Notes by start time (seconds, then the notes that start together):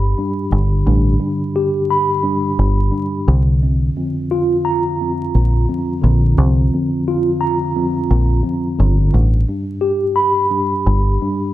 Already playing: G1 G2 G4 B5
0.18 G2
0.50 G1 D3
0.86 A1 G2
1.20 G2
1.56 G4
1.90 B5
2.23 G2
2.59 G1
2.92 G2
3.28 C2 D3
3.63 F2
3.97 F2
4.31 F4
4.65 A#5
5.01 F2
5.35 A#1
5.68 F2
6.02 A#1 D3
6.37 C2 F2
6.73 F2
7.08 F4
7.41 A#5
7.76 F2
8.11 A#1
8.43 F2
8.79 G1 D3
9.13 A1 G2
9.48 G2
9.81 G4
10.16 B5
10.51 G2
10.87 G1
11.22 G2